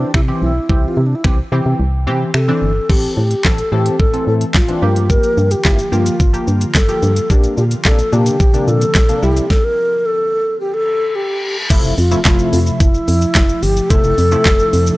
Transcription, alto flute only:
Already playing: D4
0.14 E4
0.42 E4
0.88 F4
0.97 E4
1.06 D4
1.15 E4
2.35 A4
2.90 G4
3.17 G4
3.45 A4
3.72 G4
4.00 A4
4.27 A4
4.55 F4
5.10 A#4
5.51 G4
5.92 F4
6.75 A4
7.30 G4
7.58 G4
7.85 A4
8.13 G4
8.68 A4
9.23 G4
9.50 A4
9.64 A#4
10.06 A4
10.60 G4
10.74 A4
11.15 G4
11.98 F4
12.25 F4
12.53 F4
12.80 E4
13.63 G4
13.90 A4

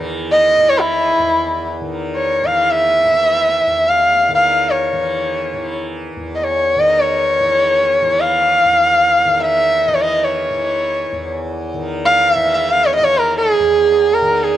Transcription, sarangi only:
0.32 D#5
0.69 C#5
0.80 E4
2.16 C#5
2.46 F5
2.71 E5
3.89 F5
4.35 F5
4.70 C#5
6.35 D#5
6.44 C#5
6.79 D#5
7.00 C#5
8.21 F5
9.41 E5
9.87 D#5
9.95 C#5
10.01 D#5
10.24 C#5
12.05 F5
12.31 E5
12.54 E5
12.71 F5
12.85 C#5
12.95 D#5
13.04 C#5
13.19 A#4
13.38 G#4
14.14 A#4
14.43 G#4

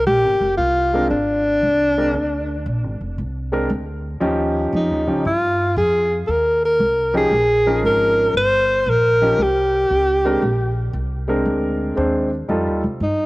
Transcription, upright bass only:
0.06 A#1
0.24 G#1
0.40 F1
0.58 C2
1.10 G#1
1.62 C2
2.14 D2
2.66 A#1
2.83 G#1
3.01 F1
3.18 C2
3.70 D2
4.21 D#2
4.73 F2
4.90 D#2
5.08 C#2
5.25 G2
5.76 F2
6.28 D#2
6.79 C2
7.31 A#1
7.83 G#1
8.34 G1
8.86 A#1
9.38 C2
9.90 C#2
10.42 A#1
10.93 C2
11.45 D2
11.97 D#2
12.49 F2
12.67 D#2
12.84 C2
13.00 G2

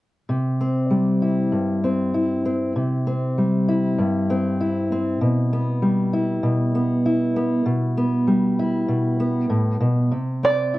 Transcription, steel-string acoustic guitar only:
0.29 C3
0.60 C4
0.90 G3
1.22 E4
1.52 G2
1.84 C4
2.14 E4
2.46 C4
2.76 C3
3.07 C4
3.38 G3
3.69 E4
3.98 G2
4.30 C4
4.61 E4
4.92 C4
5.21 B2
5.53 B3
5.82 G3
6.13 E4
6.43 B2
6.75 B3
7.06 E4
7.36 B3
7.66 B2
7.97 B3
8.27 G3
8.59 E4
8.88 B2
9.20 B3
9.50 A2
9.80 B2
10.11 C3
10.43 C4
10.74 E4

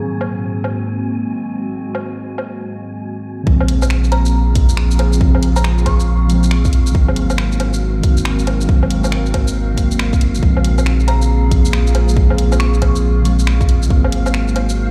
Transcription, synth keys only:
Already playing: G#2 D#3
0.00 F#3 A#3 C4
3.43 C#3 F3
3.48 G#3 C4
4.52 C#3 F3
4.57 G#3 C4
5.17 C#3 F3
5.22 G#3 C4
6.25 C#3 F3
6.31 G#3 C4
6.91 D#3 F#3
6.96 A#3 C4
7.99 D#3 F#3
8.05 A#3 C4
8.65 D#3 F#3
8.70 A#3 C4
9.73 D#3 F#3
9.79 A#3 C4
10.39 C#3 F3
10.44 G#3 C4
11.47 C#3 F3
11.53 G#3 C4
12.12 C#3 F3
12.18 G#3 C4
13.21 C#3 F3
13.26 G#3 C4
13.86 D#3 F#3
13.92 A#3 C4

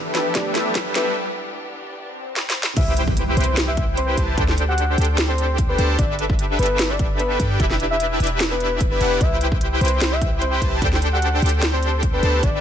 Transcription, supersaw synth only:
Already playing: D4 G4 A4 B4 E5
0.15 D4 G4 A4 B4 E5
0.35 D4 G4 A4 B4 E5
0.95 D4 G4 A4 B4 E5
2.77 E4 G4 B4 C5 G5
3.37 E4 G4 B4 C5 G5
4.18 E4 G4 B4 C5 A5
4.38 D4 G4 A4 C5 G5
4.98 D4 G4 A4 C5 G5
5.79 D4 G4 A4 C5 A5
5.99 D4 G4 A4 B4 E5
6.59 D4 G4 A4 B4 E5
7.40 D4 G4 A4 B4 G5
7.60 D4 E4 G4 B4 E5
8.20 D4 E4 G4 B4 E5
9.01 D4 E4 G4 B4 F#5
9.21 E4 G4 B4 C5 G5
9.81 E4 G4 B4 C5 G5
10.62 E4 G4 B4 C5 A5
10.82 D4 G4 A4 C5 G5
11.42 D4 G4 A4 C5 G5
12.23 D4 G4 A4 C5 A5
12.43 D4 G4 A4 B4 E5

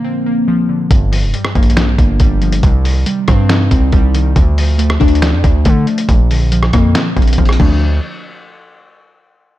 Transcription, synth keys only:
Already playing: A#2 D3 F3 A#3
0.04 C4
0.26 A#3
0.48 F3
0.69 D3
0.90 G2
1.12 F3
1.34 G3
1.56 A#3
1.77 D4
1.99 A#3
2.20 G3
2.42 F3
2.64 C3
2.84 D#3
3.06 G3
3.28 C4
3.50 D#4
3.72 C4
3.93 G3
4.15 D#3
4.37 D3
4.59 F3
4.78 A3
5.00 D4
5.22 D5
5.44 D4
5.65 A3
5.87 F3
6.09 A#2
6.31 D3
6.52 F3
6.74 A#3
6.95 C4
7.17 A#3
7.39 F3
7.60 D3 F3 A3 D4

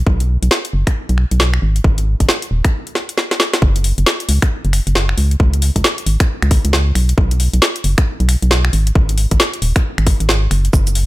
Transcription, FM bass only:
0.07 B1
0.43 B1
0.73 F#1
1.09 B1
1.32 B1
1.62 G#1
1.84 G#1
2.20 G#1
2.51 D#1
3.62 F#1
3.98 F#1
4.29 C#2
4.65 F#1
4.87 F#1
5.18 C#2
5.40 C#2
5.76 C#2
6.06 G#1
6.42 C#2
6.65 C#2
6.95 B1
7.18 B1
7.54 B1
7.84 F#1
8.20 B1
8.42 B1
8.73 G#1
8.95 G#1
9.31 G#1
9.62 D#1
9.98 G#1
10.20 G#1
10.51 F#1
10.73 F#1

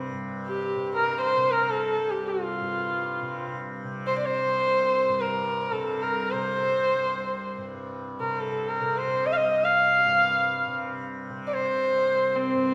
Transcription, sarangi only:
0.47 G4
0.96 A#4
1.21 C5
1.51 A#4
1.70 A4
2.10 G4
2.28 F4
4.07 C5
4.18 D5
4.26 C5
5.20 A#4
5.72 A4
6.03 A#4
6.31 C5
8.20 A#4
8.41 A4
8.68 A#4
8.98 C5
9.26 D#5
9.33 F5
9.37 D#5
9.65 F5
11.47 D5
11.54 C5
12.36 C4

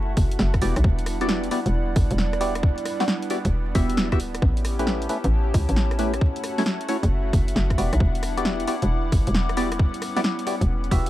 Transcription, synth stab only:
0.62 B3 E4 F#4 G4 D5
1.21 B3 E4 F#4 G4 D5
1.51 B3 E4 F#4 G4 D5
2.41 B3 E4 F#4 G4 D5
3.00 B3 E4 F#4 G4 D5
3.30 B3 E4 F#4 G4 D5
3.75 B3 E4 F#4 G4 E5
4.12 B3 E4 F#4 G4 E5
4.79 A3 C#4 E4 G4 B4
5.09 A3 C#4 E4 G4 B4
5.99 A3 C#4 E4 G4 B4
6.58 A3 C#4 E4 F#4 C#5
6.89 A3 C#4 E4 F#4 C#5
7.78 B3 E4 F#4 G4 D5
8.37 B3 E4 F#4 G4 D5
8.68 B3 E4 F#4 G4 D5
9.57 B3 E4 F#4 G4 D5
10.17 B3 E4 F#4 G4 D5
10.47 B3 E4 F#4 G4 D5
10.91 B3 E4 F#4 G4 E5

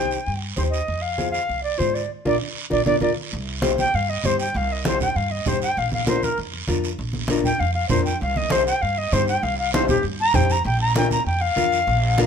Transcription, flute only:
Already playing: G5
0.56 C5
0.70 D#5
1.02 F5
1.31 F5
1.63 D5
1.78 C5
1.94 D5
2.27 D5
2.72 D5
2.86 D5
3.03 D5
3.80 G5
3.95 F5
4.09 D#5
4.25 C5
4.40 G5
4.57 F5
4.72 D#5
4.87 C5
5.02 G5
5.16 F5
5.31 D#5
5.48 C5
5.62 G5
5.78 F5
5.93 F5
6.08 C5
6.24 A#4
7.45 G5
7.60 F5
7.74 F5
7.89 C5
8.05 G5
8.22 F5
8.37 D#5
8.51 C5
8.66 G5
8.82 F5
8.98 D#5
9.13 C5
9.28 G5
9.43 F5
9.59 F5
9.74 C5
9.88 G4
10.21 A#5
10.35 G5
10.52 A#5
10.66 G5
10.81 A#5
10.97 G5
11.12 A#5
11.26 G5
11.41 F5

